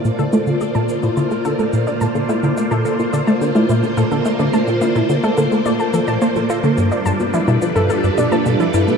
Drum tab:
SH |xxxxxxxxxxxxxxxx|xxxxxxxxxxxxxxxx|xxxxxxxxxxxxxxxx|xxxxxxxxxxxxxxxx|
CG |--o------------o|-----------o---o|--o--o---------o|-----------o---o|